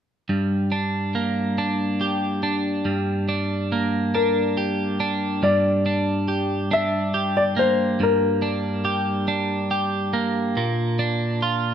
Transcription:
0.29 clean electric guitar G2
0.72 clean electric guitar D4
1.15 clean electric guitar A#3
1.58 clean electric guitar D4
2.01 clean electric guitar G4
2.43 clean electric guitar D4
2.85 clean electric guitar G2
3.29 clean electric guitar D4
3.72 clean electric guitar A#3
4.15 clean electric guitar D4, grand piano A#4
4.57 clean electric guitar G4
5.00 clean electric guitar D4
5.43 clean electric guitar G2, grand piano D5
5.86 clean electric guitar D4
6.28 clean electric guitar G4
6.71 clean electric guitar D4, grand piano E5
7.14 clean electric guitar G4
7.37 grand piano D5
7.57 clean electric guitar A#3, grand piano C5
8.00 clean electric guitar G2, grand piano A#4
8.42 clean electric guitar D4
8.85 clean electric guitar G4
9.28 clean electric guitar D4
9.71 clean electric guitar G4
10.13 clean electric guitar A#3
10.57 clean electric guitar A#2
10.99 clean electric guitar D4
11.42 clean electric guitar F4

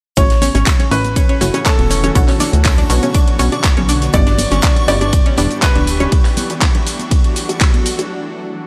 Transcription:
0.17 analog synth bass A1, synth pluck A2 A3 C#4 E4 F#4 C#5, ambient pad E3 F#3 A3 C#4 F#4, synth arpeggio sound C#4 C#5, grand piano C#5, synth texture C#6, kick, closed hi-hat, ride, cabasa, shaker
0.30 snare, closed hi-hat
0.42 synth arpeggio sound C#4 C#5, open hi-hat, high conga, low conga, cabasa, shaker
0.54 analog synth bass A1, synth arpeggio sound C#4 C#5, snare, closed hi-hat, high bongo, cabasa
0.66 kick, snare, clap, closed hi-hat, ride, cabasa, shaker
0.79 synth arpeggio sound C#4 C#5, closed hi-hat, low conga
0.91 analog synth bass A1, synth pluck A2 A3 C#4 E4 F#4 C#5, synth arpeggio sound C#4 C#5, grand piano B4, open hi-hat, cabasa, shaker
1.04 closed hi-hat, high bongo, high conga, cabasa
1.16 synth arpeggio sound C#4 C#5, kick, closed hi-hat, ride, cabasa, shaker
1.29 synth arpeggio sound C#4 C#5, closed hi-hat
1.41 analog synth bass F#1, synth pluck A2 A3 C#4 E4 F#4 C#5, snare, open hi-hat, cabasa, shaker
1.54 synth arpeggio sound C#4 C#5, closed hi-hat, high bongo, cabasa
1.66 synth arpeggio sound C#4 C#5, grand piano A4, kick, snare, clap, closed hi-hat, ride, cabasa, shaker
1.78 analog synth bass E1, snare, closed hi-hat, high conga
1.90 synth arpeggio sound C#4 C#5, open hi-hat, cabasa, shaker
2.03 synth arpeggio sound C#4 C#5, closed hi-hat, high bongo, low conga, cabasa
2.15 analog synth bass B1, synth pluck B2 B3 C#4 D4 F#4 C#5, ambient pad D3 B3 C#5, kick, closed hi-hat, ride, cabasa, shaker
2.28 synth arpeggio sound C#4 C#5, clap, open hi-hat
2.40 synth arpeggio sound D4 D5, snare, open hi-hat, high conga, low conga, cabasa, shaker
2.53 analog synth bass D2, closed hi-hat, high bongo, cabasa
2.65 synth arpeggio sound C#4 C#5, kick, snare, clap, closed hi-hat, open hi-hat, ride, cabasa
2.78 synth arpeggio sound D4 D5, closed hi-hat, low conga
2.90 analog synth bass B1, synth pluck B2 B3 C#4 D4 F#4 C#5, open hi-hat, cabasa, shaker
3.03 synth arpeggio sound C#4 C#5, closed hi-hat, high bongo, high conga, cabasa
3.14 synth arpeggio sound D4 D5, kick, closed hi-hat, ride, cabasa, shaker
3.28 closed hi-hat
3.39 analog synth bass B1, synth pluck B2 B3 C#4 D4 F#4 C#5, synth arpeggio sound C#4 C#5, open hi-hat, cabasa, shaker
3.52 synth arpeggio sound D4 D5, closed hi-hat, high bongo, cabasa
3.64 kick, snare, clap, closed hi-hat, ride, cabasa, shaker
3.77 analog synth bass B1, synth arpeggio sound C#4 C#5, closed hi-hat, high conga
3.89 synth arpeggio sound D4 D5, open hi-hat, cabasa, shaker
4.02 snare, closed hi-hat, high bongo, cabasa
4.13 analog synth bass G1, synth pluck G2 B3 D4 E4 G4 D5, ambient pad E3 G3 D4 G4, synth arpeggio sound C#4 C#5, grand piano D5, kick, closed hi-hat, ride, cabasa, shaker
4.27 synth arpeggio sound D4 D5, snare, closed hi-hat
4.38 open hi-hat, high conga, low conga, cabasa, shaker
4.51 analog synth bass G1, synth arpeggio sound C#4 C#5, snare, closed hi-hat, high bongo, cabasa
4.62 synth arpeggio sound D4 D5, kick, snare, clap, closed hi-hat, ride, cabasa, shaker
4.76 closed hi-hat, low conga
4.88 analog synth bass G1, synth pluck G2 B3 D4 E4 G4 D5, synth arpeggio sound C#4 C#5, grand piano D5, open hi-hat, cabasa, shaker
5.01 synth arpeggio sound D4 D5, closed hi-hat, high bongo, high conga, cabasa
5.13 kick, closed hi-hat, ride, cabasa, shaker
5.26 synth arpeggio sound C#4 C#5, closed hi-hat
5.38 analog synth bass E1, synth pluck G2 B3 D4 E4 G4 D5, synth arpeggio sound D4 D5, snare, open hi-hat, cabasa, shaker
5.51 closed hi-hat, high bongo, cabasa
5.62 synth arpeggio sound C#4 C#5, grand piano B4, kick, snare, clap, closed hi-hat, ride, cabasa, shaker
5.75 analog synth bass D1, synth arpeggio sound D4 D5, snare, closed hi-hat, high conga
5.87 open hi-hat, cabasa, shaker
6.00 synth arpeggio sound C#4 C#5, closed hi-hat, high bongo, low conga, cabasa
6.12 ambient pad F#3 A3 D4 F#4, kick, closed hi-hat, ride, cabasa
6.25 clap, open hi-hat
6.37 open hi-hat, high conga, low conga, cabasa
6.50 closed hi-hat, high bongo, cabasa
6.62 kick, clap, closed hi-hat, ride, cabasa
6.75 closed hi-hat, low conga
6.87 open hi-hat, cabasa
6.99 closed hi-hat, high bongo, high conga, cabasa
7.11 kick, closed hi-hat, ride, cabasa
7.24 closed hi-hat
7.36 open hi-hat, cabasa
7.49 closed hi-hat, high bongo, cabasa
7.61 kick, clap, closed hi-hat, ride, cabasa
7.74 closed hi-hat, high conga
7.86 open hi-hat, cabasa
7.99 closed hi-hat, high bongo, cabasa

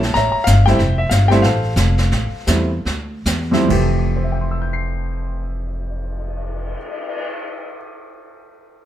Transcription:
Already playing: upright bass A#1, grand piano C#5 E5 A5
0.03 snare
0.14 upright bass A1, grand piano C#5 E5 A#5, brush sweep, snare
0.32 grand piano A#5, muted upright bass stroke
0.44 upright bass G1, grand piano F5, snare, hi-hat pedal
0.66 grand piano G3 A3 C4 E4 C5 G5, snare
0.70 grand piano E5
0.79 upright bass F1, brush sweep, snare
0.98 grand piano E5
1.09 upright bass G1, grand piano F5, snare, hi-hat pedal
1.28 grand piano G3 A3 C4 G5, snare
1.32 grand piano E4
1.42 upright bass A1, grand piano A4 C5 F5, brush sweep, snare
1.76 upright bass F1, snare, hi-hat pedal
1.98 snare
2.11 upright bass A1, brush sweep, snare
2.33 muted upright bass stroke
2.47 upright bass E2, grand piano G3 A3 C4 E4, snare, hi-hat pedal
2.85 upright bass D2, brush sweep, snare
3.26 upright bass E2, snare, hi-hat pedal
3.51 grand piano F2 G3 A3 C4 E4, snare
3.68 upright bass F1, grand piano F2 E3 A3 G4, kick, crash
3.98 cymbal swell
4.16 grand piano C5
4.24 grand piano E5
4.32 grand piano G5
4.41 grand piano C6
4.51 grand piano E6
4.62 grand piano G6
4.73 grand piano C7

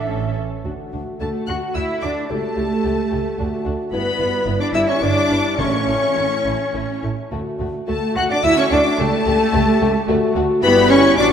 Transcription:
Already playing: cello section E3, violin section A4 E5, flute E5
0.07 double bass section A1, french horn section A3 C#4, viola section C#4 A4
0.64 double bass section D2, french horn section A3 F#4, violin section D4 F#4
0.92 double bass section D2, violin section D4 F#4
1.20 double bass section D2, viola section A3, cello section A3, french horn section A3 F#4, violin section D4 F#4 A5, flute A4, clarinet A4
1.47 double bass section D2, violin section D4 F#4 F#6, viola section F#4, cello section F#4, clarinet F#5, flute F#5
1.74 double bass section D2, violin section D4 F#4 E6, viola section E4, cello section E4, clarinet E5, flute E5
2.02 double bass section D2, violin section D4 F#4 D6, cello section D4, viola section D4, clarinet D5, flute D5
2.29 double bass section C#2, cello section A3, viola section A3, french horn section A3 G4, violin section E4 G4 A5, clarinet A4, flute A4
2.57 double bass section C#2, violin section E4 G4
2.84 double bass section C#2, violin section E4 G4
3.11 double bass section C#2, violin section E4 G4
3.39 double bass section D2, french horn section A3 F#4, violin section D4 F#4
3.65 double bass section D2, violin section D4 F#4
3.92 double bass section G1, french horn section G3 E4, cello section B3, viola section B3, violin section B3 E4 B5, clarinet B4, flute B4
4.19 double bass section G1, violin section B3 E4
4.46 double bass section G1, violin section B3 E4
4.60 viola section D4, cello section D4, clarinet D5, flute D5, violin section D6
4.74 double bass section G1, violin section B3 E4 E6, viola section E4, cello section E4, clarinet E5, flute E5
4.88 viola section C#4, cello section C#4, clarinet C#5, flute C#5, violin section C#6
5.01 double bass section G1, violin section B3 E4 D6, viola section D4, cello section D4, flute D5, clarinet D5
5.30 double bass section G1, violin section B3 E4
5.57 double bass section A1, timpani A2, french horn section A3 E4, violin section A3 E4 C#6, viola section C#4, cello section C#4, flute C#5, clarinet C#5
5.87 double bass section A1, violin section A3 E4
6.16 double bass section A1, violin section A3 E4
6.45 double bass section A1, violin section A3 E4
6.73 double bass section A1, violin section A3 E4
7.03 double bass section A1, violin section A3 E4
7.31 double bass section D2, french horn section A3 F#4, violin section A3 F#4
7.60 double bass section D2, violin section A3 F#4
7.88 double bass section D2, viola section A3, violin section A3 F#4 A5, cello section A3, french horn section A3 F#4, clarinet A4, flute A4
8.16 double bass section D2, violin section A3 F#4 F#6, cello section F#4, viola section F#4, clarinet F#5, flute F#5
8.30 viola section D4, cello section D4, clarinet D5, flute D5, violin section D6
8.43 double bass section D2, violin section A3 F#4 E6, viola section E4, cello section E4, flute E5, clarinet E5
8.58 viola section C#4, cello section C#4, flute C#5, clarinet C#5, violin section C#6
8.71 double bass section D2, violin section A3 F#4 D6, viola section D4, cello section D4, flute D5, clarinet D5
8.98 double bass section C#2, french horn section A3 G4, cello section A3, violin section A3 G4 A5, viola section A3, flute A4, clarinet A4
9.26 double bass section C#2, violin section A3 G4
9.53 double bass section C#2, violin section A3 G4
9.81 double bass section C#2, violin section A3 G4
10.08 double bass section D2, violin section A3 F#4, french horn section A3 F#4
10.36 double bass section D2, violin section A3 F#4
10.62 double bass section G1, french horn section G3 E4, viola section B3, cello section B3, violin section E4 G4 B5, flute B4, clarinet B4
10.90 viola section C#4, cello section C#4, clarinet C#5, flute C#5, violin section C#6
11.17 double bass section A1, french horn section F#3 D4, violin section D4 F#4 D6, viola section D4, cello section D4, flute D5, clarinet D5

